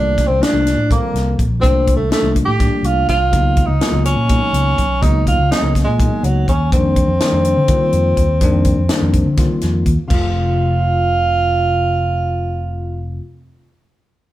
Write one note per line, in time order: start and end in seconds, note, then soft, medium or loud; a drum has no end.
0.00 0.24 C2 medium
0.00 0.28 F3 medium
0.00 0.29 G3 medium
0.00 0.29 A3 medium
0.00 0.29 A#3 medium
0.00 0.28 D4 medium
0.00 0.29 D4 medium
0.18 kick medium
0.18 snare soft
0.18 closed hi-hat medium
0.27 0.40 C2 medium
0.27 0.44 C4 medium
0.40 0.76 F3 medium
0.40 0.77 G3 medium
0.40 0.77 A3 medium
0.40 0.77 A#3 medium
0.40 0.77 D4 medium
0.40 0.91 D4 loud
0.40 snare loud
0.40 closed hi-hat medium
0.53 0.74 C2 medium
0.67 snare soft
0.67 closed hi-hat medium
0.76 0.97 A2 medium
0.89 1.43 F3 medium
0.89 1.43 G3 medium
0.89 1.44 A#3 medium
0.89 1.34 A#3 medium
0.89 1.44 C4 medium
0.89 1.44 A4 medium
0.89 kick loud
0.89 closed hi-hat medium
1.14 1.35 C2 medium
1.14 snare soft
1.14 closed hi-hat medium
1.39 1.63 A#1 medium
1.39 kick medium
1.39 closed hi-hat medium
1.60 1.94 C2 medium
1.60 1.97 F3 medium
1.60 1.97 G3 medium
1.60 1.97 A3 medium
1.60 1.98 A#3 medium
1.60 1.92 C4 medium
1.60 1.98 D4 medium
1.60 kick medium
1.64 closed hi-hat medium
1.87 kick medium
1.87 closed hi-hat medium
1.96 2.09 C2 medium
1.96 2.11 A3 medium
2.09 2.46 F3 medium
2.09 2.46 G3 medium
2.09 2.46 A3 medium
2.09 2.35 A3 medium
2.09 2.47 A#3 medium
2.09 2.47 D4 medium
2.09 snare loud
2.09 closed hi-hat medium
2.22 2.43 C2 medium
2.36 kick medium
2.36 closed hi-hat medium
2.46 2.68 A2 medium
2.46 2.87 G4 loud
2.59 3.13 F3 medium
2.59 3.13 G3 medium
2.59 3.13 A3 medium
2.59 3.13 A#3 medium
2.59 3.14 D4 medium
2.59 kick medium
2.59 snare soft
2.59 closed hi-hat medium
2.83 3.04 C2 medium
2.83 3.09 F4 medium
2.83 closed hi-hat medium
3.09 3.33 C2 medium
3.09 3.68 F4 loud
3.09 kick medium
3.09 snare soft
3.09 closed hi-hat medium
3.31 3.63 C#2 medium
3.31 3.68 F#3 medium
3.31 3.68 G#3 medium
3.31 3.68 A#3 medium
3.31 3.69 B3 medium
3.31 3.69 D#4 medium
3.31 kick loud
3.31 closed hi-hat medium
3.57 kick medium
3.57 closed hi-hat medium
3.66 3.79 C#2 medium
3.66 4.05 D#4 medium
3.80 4.16 F#3 medium
3.80 4.17 G#3 medium
3.80 4.17 A#3 medium
3.80 4.17 B3 medium
3.80 4.17 F4 medium
3.80 snare loud
3.80 closed hi-hat medium
3.92 4.13 C#2 medium
4.05 5.04 C#4 loud
4.05 closed hi-hat medium
4.16 4.37 A#2 medium
4.28 4.82 F#3 medium
4.28 4.83 G#3 medium
4.28 4.83 A#3 medium
4.28 4.83 B3 medium
4.28 4.84 D#4 medium
4.28 kick loud
4.28 closed hi-hat medium
4.53 4.74 C#2 medium
4.53 closed hi-hat medium
4.78 5.02 B1 medium
4.78 kick medium
4.78 closed hi-hat medium
5.02 5.33 C#2 medium
5.02 5.38 F#3 medium
5.02 5.38 G#3 medium
5.02 5.38 A#3 medium
5.02 5.38 B3 medium
5.02 5.27 D#4 medium
5.02 5.39 D#4 medium
5.02 kick medium
5.02 closed hi-hat medium
5.27 5.50 F4 medium
5.27 kick medium
5.27 closed hi-hat medium
5.38 5.49 C#2 medium
5.50 5.86 F#3 medium
5.50 5.86 G#3 medium
5.50 5.87 A#3 medium
5.50 5.87 B3 medium
5.50 5.87 C#4 medium
5.50 5.74 D#4 medium
5.50 snare loud
5.50 closed hi-hat medium
5.62 5.83 C#2 medium
5.75 kick medium
5.75 snare soft
5.75 closed hi-hat medium
5.84 6.08 A#2 medium
5.84 6.26 G#3 medium
5.98 6.52 F#3 medium
5.98 6.53 G#3 medium
5.98 6.53 A#3 medium
5.98 6.53 B3 medium
5.98 6.53 D#4 medium
5.98 kick medium
5.98 closed hi-hat medium
6.23 6.44 C#2 medium
6.23 6.49 F#3 medium
6.23 closed hi-hat medium
6.48 6.72 D#2 medium
6.48 6.71 C#4 medium
6.48 kick medium
6.48 closed hi-hat medium
6.72 7.03 F2 medium
6.72 7.08 D#3 medium
6.72 7.08 G3 medium
6.72 7.08 A#3 medium
6.72 9.59 C4 medium
6.72 7.08 C4 medium
6.72 7.09 D4 medium
6.72 kick loud
6.72 closed hi-hat medium
6.96 kick medium
6.96 closed hi-hat medium
7.08 7.19 F2 medium
7.20 7.57 D#3 medium
7.20 7.57 G3 medium
7.20 7.57 A#3 medium
7.20 7.57 C4 medium
7.20 7.57 D4 medium
7.20 snare loud
7.20 closed hi-hat medium
7.32 7.53 F2 medium
7.45 closed hi-hat medium
7.57 7.77 D3 medium
7.68 8.22 D#3 medium
7.68 8.22 G3 medium
7.68 8.22 A#3 medium
7.68 8.22 C4 medium
7.68 8.22 F4 medium
7.68 kick loud
7.68 closed hi-hat medium
7.93 8.13 F2 medium
7.93 closed hi-hat medium
8.17 8.41 D#2 medium
8.17 kick medium
8.17 closed hi-hat medium
8.41 8.72 F2 medium
8.41 8.77 D#3 medium
8.41 8.77 G3 medium
8.41 8.78 A#3 medium
8.41 8.78 C4 medium
8.41 8.78 D4 medium
8.41 kick loud
8.41 closed hi-hat medium
8.65 kick medium
8.65 closed hi-hat medium
8.78 8.88 F2 medium
8.89 9.26 D#3 medium
8.89 9.26 G3 medium
8.89 9.26 A#3 medium
8.89 9.27 C4 medium
8.89 snare loud
8.89 closed hi-hat medium
8.93 9.27 D4 medium
9.01 9.22 F2 medium
9.13 kick medium
9.13 closed hi-hat medium
9.26 9.46 D3 medium
9.37 9.91 D#3 medium
9.37 9.91 G3 medium
9.37 9.91 A#3 medium
9.37 9.92 C4 medium
9.37 9.92 F4 medium
9.37 kick medium
9.37 snare soft
9.37 closed hi-hat medium
9.61 9.83 F2 medium
9.61 snare soft
9.61 closed hi-hat medium
9.86 9.96 D#2 medium
9.86 kick medium
9.86 closed hi-hat medium
10.08 13.19 F1 medium
10.08 13.17 C3 medium
10.08 13.19 F3 medium
10.08 13.20 A3 medium
10.08 13.18 F4 medium
10.08 kick medium
10.08 crash medium
10.12 13.21 C4 medium
10.12 13.24 F4 medium